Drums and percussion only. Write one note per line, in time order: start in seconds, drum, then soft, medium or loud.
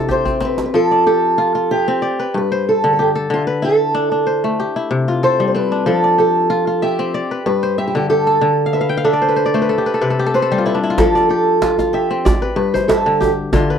0.09 djembe bass soft
0.26 djembe bass soft
0.40 djembe slap soft
0.58 djembe slap medium
10.98 djembe slap medium
10.98 djembe bass medium
11.16 djembe tone medium
11.62 djembe slap medium
11.79 djembe slap soft
11.79 djembe tone soft
12.26 djembe slap medium
12.26 djembe tone medium
12.26 djembe bass medium
12.75 djembe tone medium
12.89 djembe slap medium
13.22 djembe tone medium
13.53 djembe slap medium
13.53 djembe bass medium